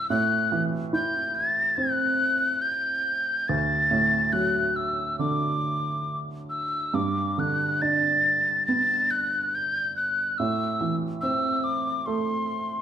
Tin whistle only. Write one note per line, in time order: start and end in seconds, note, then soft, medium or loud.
0.10 0.63 F#6 loud
0.94 1.37 G6 medium
1.35 1.78 A6 medium
1.77 2.63 F#6 medium
2.62 3.50 G6 medium
3.48 4.34 A6 medium
4.33 4.78 F#6 medium
4.76 5.19 E6 medium
5.19 6.19 D6 medium
6.50 6.96 E6 medium
6.95 7.41 D6 medium
7.39 7.83 F#6 medium
7.82 8.66 A6 medium
8.66 9.12 A6 medium
9.11 9.57 F#6 medium
9.55 9.96 G6 medium
9.96 10.39 F#6 medium
10.38 10.96 E6 medium
11.21 11.65 E6 medium
11.64 12.08 D6 medium
12.06 12.82 C6 medium